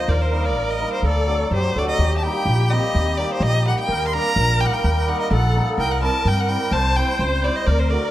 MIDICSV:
0, 0, Header, 1, 5, 480
1, 0, Start_track
1, 0, Tempo, 473560
1, 92, Time_signature, 2, 2, 24, 8
1, 8219, End_track
2, 0, Start_track
2, 0, Title_t, "Violin"
2, 0, Program_c, 0, 40
2, 0, Note_on_c, 0, 75, 85
2, 90, Note_on_c, 0, 74, 75
2, 105, Note_off_c, 0, 75, 0
2, 217, Note_on_c, 0, 72, 76
2, 232, Note_off_c, 0, 74, 0
2, 461, Note_on_c, 0, 74, 81
2, 476, Note_off_c, 0, 72, 0
2, 712, Note_on_c, 0, 75, 81
2, 727, Note_off_c, 0, 74, 0
2, 937, Note_off_c, 0, 75, 0
2, 943, Note_on_c, 0, 72, 72
2, 1051, Note_off_c, 0, 72, 0
2, 1079, Note_on_c, 0, 74, 84
2, 1516, Note_off_c, 0, 74, 0
2, 1554, Note_on_c, 0, 72, 90
2, 1806, Note_on_c, 0, 74, 78
2, 1821, Note_off_c, 0, 72, 0
2, 1901, Note_off_c, 0, 74, 0
2, 1907, Note_on_c, 0, 75, 90
2, 2172, Note_off_c, 0, 75, 0
2, 2204, Note_on_c, 0, 81, 59
2, 2256, Note_on_c, 0, 79, 97
2, 2271, Note_off_c, 0, 81, 0
2, 2736, Note_on_c, 0, 75, 94
2, 2751, Note_off_c, 0, 79, 0
2, 3219, Note_on_c, 0, 74, 85
2, 3234, Note_off_c, 0, 75, 0
2, 3319, Note_off_c, 0, 74, 0
2, 3319, Note_on_c, 0, 74, 56
2, 3360, Note_on_c, 0, 72, 96
2, 3375, Note_off_c, 0, 74, 0
2, 3471, Note_on_c, 0, 75, 109
2, 3487, Note_off_c, 0, 72, 0
2, 3705, Note_off_c, 0, 75, 0
2, 3725, Note_on_c, 0, 78, 86
2, 3825, Note_off_c, 0, 78, 0
2, 3851, Note_on_c, 0, 79, 100
2, 4105, Note_off_c, 0, 79, 0
2, 4130, Note_on_c, 0, 84, 67
2, 4191, Note_on_c, 0, 82, 125
2, 4206, Note_off_c, 0, 84, 0
2, 4667, Note_on_c, 0, 79, 103
2, 4682, Note_off_c, 0, 82, 0
2, 4722, Note_on_c, 0, 78, 93
2, 4737, Note_off_c, 0, 79, 0
2, 4800, Note_on_c, 0, 79, 93
2, 4815, Note_off_c, 0, 78, 0
2, 5156, Note_on_c, 0, 78, 86
2, 5171, Note_off_c, 0, 79, 0
2, 5267, Note_off_c, 0, 78, 0
2, 5281, Note_on_c, 0, 75, 76
2, 5382, Note_off_c, 0, 75, 0
2, 5395, Note_on_c, 0, 78, 93
2, 5721, Note_off_c, 0, 78, 0
2, 5879, Note_on_c, 0, 79, 96
2, 5993, Note_on_c, 0, 78, 75
2, 6008, Note_off_c, 0, 79, 0
2, 6105, Note_off_c, 0, 78, 0
2, 6111, Note_on_c, 0, 81, 91
2, 6362, Note_on_c, 0, 79, 104
2, 6377, Note_off_c, 0, 81, 0
2, 6489, Note_on_c, 0, 78, 89
2, 6504, Note_off_c, 0, 79, 0
2, 6574, Note_on_c, 0, 79, 92
2, 6589, Note_off_c, 0, 78, 0
2, 6818, Note_on_c, 0, 81, 102
2, 6833, Note_off_c, 0, 79, 0
2, 7057, Note_on_c, 0, 79, 92
2, 7073, Note_off_c, 0, 81, 0
2, 7304, Note_on_c, 0, 72, 89
2, 7319, Note_off_c, 0, 79, 0
2, 7539, Note_on_c, 0, 74, 77
2, 7554, Note_off_c, 0, 72, 0
2, 7664, Note_on_c, 0, 75, 82
2, 7679, Note_off_c, 0, 74, 0
2, 7769, Note_on_c, 0, 74, 87
2, 7785, Note_off_c, 0, 75, 0
2, 7894, Note_on_c, 0, 72, 73
2, 7909, Note_off_c, 0, 74, 0
2, 8011, Note_on_c, 0, 74, 80
2, 8026, Note_off_c, 0, 72, 0
2, 8219, Note_off_c, 0, 74, 0
2, 8219, End_track
3, 0, Start_track
3, 0, Title_t, "Accordion"
3, 0, Program_c, 1, 21
3, 0, Note_on_c, 1, 72, 89
3, 84, Note_on_c, 1, 70, 82
3, 142, Note_off_c, 1, 72, 0
3, 1051, Note_on_c, 1, 69, 80
3, 1081, Note_off_c, 1, 70, 0
3, 1529, Note_on_c, 1, 67, 67
3, 1549, Note_off_c, 1, 69, 0
3, 1780, Note_on_c, 1, 69, 58
3, 1781, Note_off_c, 1, 67, 0
3, 2002, Note_off_c, 1, 69, 0
3, 2006, Note_on_c, 1, 67, 81
3, 3893, Note_off_c, 1, 67, 0
3, 3931, Note_on_c, 1, 70, 94
3, 5385, Note_on_c, 1, 69, 85
3, 5417, Note_off_c, 1, 70, 0
3, 5845, Note_on_c, 1, 70, 89
3, 5875, Note_off_c, 1, 69, 0
3, 6807, Note_on_c, 1, 72, 111
3, 6838, Note_off_c, 1, 70, 0
3, 7762, Note_on_c, 1, 70, 97
3, 7798, Note_off_c, 1, 72, 0
3, 8219, Note_off_c, 1, 70, 0
3, 8219, End_track
4, 0, Start_track
4, 0, Title_t, "Hammered dulcimer"
4, 0, Program_c, 2, 15
4, 0, Note_on_c, 2, 53, 52
4, 143, Note_off_c, 2, 53, 0
4, 334, Note_on_c, 2, 55, 60
4, 338, Note_on_c, 2, 58, 60
4, 349, Note_on_c, 2, 63, 66
4, 456, Note_off_c, 2, 58, 0
4, 461, Note_off_c, 2, 63, 0
4, 799, Note_off_c, 2, 55, 0
4, 811, Note_on_c, 2, 55, 51
4, 814, Note_on_c, 2, 58, 47
4, 831, Note_on_c, 2, 63, 57
4, 935, Note_off_c, 2, 58, 0
4, 943, Note_off_c, 2, 63, 0
4, 1106, Note_off_c, 2, 55, 0
4, 1282, Note_on_c, 2, 54, 62
4, 1290, Note_on_c, 2, 57, 54
4, 1302, Note_on_c, 2, 62, 63
4, 1414, Note_off_c, 2, 57, 0
4, 1420, Note_off_c, 2, 62, 0
4, 1774, Note_off_c, 2, 54, 0
4, 1786, Note_on_c, 2, 54, 65
4, 1789, Note_on_c, 2, 57, 65
4, 1805, Note_on_c, 2, 62, 73
4, 1903, Note_off_c, 2, 57, 0
4, 1912, Note_off_c, 2, 62, 0
4, 2069, Note_off_c, 2, 54, 0
4, 2272, Note_on_c, 2, 55, 70
4, 2276, Note_on_c, 2, 58, 55
4, 2296, Note_on_c, 2, 63, 78
4, 2387, Note_off_c, 2, 58, 0
4, 2397, Note_off_c, 2, 63, 0
4, 2728, Note_off_c, 2, 55, 0
4, 2740, Note_on_c, 2, 55, 53
4, 2752, Note_on_c, 2, 58, 51
4, 2755, Note_on_c, 2, 60, 64
4, 2866, Note_off_c, 2, 58, 0
4, 2867, Note_off_c, 2, 60, 0
4, 3206, Note_off_c, 2, 55, 0
4, 3218, Note_on_c, 2, 55, 62
4, 3229, Note_on_c, 2, 58, 68
4, 3237, Note_on_c, 2, 63, 68
4, 3344, Note_off_c, 2, 58, 0
4, 3348, Note_off_c, 2, 63, 0
4, 3691, Note_off_c, 2, 55, 0
4, 3703, Note_on_c, 2, 55, 59
4, 3716, Note_on_c, 2, 58, 51
4, 3720, Note_on_c, 2, 63, 55
4, 3828, Note_off_c, 2, 58, 0
4, 3829, Note_off_c, 2, 63, 0
4, 4178, Note_off_c, 2, 55, 0
4, 4190, Note_on_c, 2, 55, 65
4, 4197, Note_on_c, 2, 58, 59
4, 4205, Note_on_c, 2, 62, 76
4, 4308, Note_off_c, 2, 58, 0
4, 4312, Note_off_c, 2, 62, 0
4, 4645, Note_off_c, 2, 55, 0
4, 4657, Note_on_c, 2, 55, 65
4, 4671, Note_on_c, 2, 58, 54
4, 4682, Note_on_c, 2, 63, 65
4, 4785, Note_off_c, 2, 58, 0
4, 4790, Note_off_c, 2, 63, 0
4, 5123, Note_off_c, 2, 55, 0
4, 5135, Note_on_c, 2, 55, 68
4, 5150, Note_on_c, 2, 58, 57
4, 5158, Note_on_c, 2, 63, 81
4, 5264, Note_off_c, 2, 58, 0
4, 5268, Note_off_c, 2, 63, 0
4, 5611, Note_off_c, 2, 55, 0
4, 5623, Note_on_c, 2, 55, 56
4, 5634, Note_on_c, 2, 58, 50
4, 5644, Note_on_c, 2, 63, 68
4, 5745, Note_off_c, 2, 58, 0
4, 5750, Note_off_c, 2, 63, 0
4, 5908, Note_off_c, 2, 55, 0
4, 6088, Note_on_c, 2, 55, 65
4, 6100, Note_on_c, 2, 60, 59
4, 6110, Note_on_c, 2, 64, 77
4, 6218, Note_off_c, 2, 60, 0
4, 6223, Note_off_c, 2, 64, 0
4, 6561, Note_off_c, 2, 55, 0
4, 6573, Note_on_c, 2, 55, 55
4, 6577, Note_on_c, 2, 60, 48
4, 6590, Note_on_c, 2, 64, 65
4, 6696, Note_off_c, 2, 60, 0
4, 6703, Note_off_c, 2, 64, 0
4, 7048, Note_off_c, 2, 55, 0
4, 7061, Note_on_c, 2, 55, 60
4, 7071, Note_on_c, 2, 60, 59
4, 7083, Note_on_c, 2, 64, 67
4, 7182, Note_off_c, 2, 60, 0
4, 7189, Note_off_c, 2, 64, 0
4, 7508, Note_off_c, 2, 55, 0
4, 7520, Note_on_c, 2, 55, 56
4, 7538, Note_on_c, 2, 60, 49
4, 7548, Note_on_c, 2, 64, 59
4, 7656, Note_off_c, 2, 60, 0
4, 7660, Note_off_c, 2, 64, 0
4, 7824, Note_off_c, 2, 55, 0
4, 8003, Note_on_c, 2, 57, 64
4, 8011, Note_on_c, 2, 62, 60
4, 8030, Note_on_c, 2, 66, 63
4, 8128, Note_off_c, 2, 57, 0
4, 8131, Note_off_c, 2, 62, 0
4, 8141, Note_off_c, 2, 66, 0
4, 8219, End_track
5, 0, Start_track
5, 0, Title_t, "Upright bass"
5, 0, Program_c, 3, 32
5, 82, Note_on_c, 3, 39, 92
5, 552, Note_off_c, 3, 39, 0
5, 552, Note_on_c, 3, 33, 82
5, 847, Note_off_c, 3, 33, 0
5, 1038, Note_on_c, 3, 38, 84
5, 1523, Note_off_c, 3, 38, 0
5, 1529, Note_on_c, 3, 42, 81
5, 1749, Note_off_c, 3, 42, 0
5, 1781, Note_on_c, 3, 38, 61
5, 1996, Note_off_c, 3, 38, 0
5, 2012, Note_on_c, 3, 39, 81
5, 2302, Note_off_c, 3, 39, 0
5, 2487, Note_on_c, 3, 34, 98
5, 2779, Note_off_c, 3, 34, 0
5, 2986, Note_on_c, 3, 39, 98
5, 3272, Note_off_c, 3, 39, 0
5, 3450, Note_on_c, 3, 34, 101
5, 3740, Note_off_c, 3, 34, 0
5, 3937, Note_on_c, 3, 39, 83
5, 4226, Note_off_c, 3, 39, 0
5, 4420, Note_on_c, 3, 34, 100
5, 4708, Note_off_c, 3, 34, 0
5, 4905, Note_on_c, 3, 39, 93
5, 5191, Note_off_c, 3, 39, 0
5, 5379, Note_on_c, 3, 34, 110
5, 5666, Note_off_c, 3, 34, 0
5, 5856, Note_on_c, 3, 36, 85
5, 6144, Note_off_c, 3, 36, 0
5, 6336, Note_on_c, 3, 43, 105
5, 6624, Note_off_c, 3, 43, 0
5, 6805, Note_on_c, 3, 36, 85
5, 7096, Note_off_c, 3, 36, 0
5, 7289, Note_on_c, 3, 37, 91
5, 7578, Note_off_c, 3, 37, 0
5, 7774, Note_on_c, 3, 38, 86
5, 8061, Note_off_c, 3, 38, 0
5, 8219, End_track
0, 0, End_of_file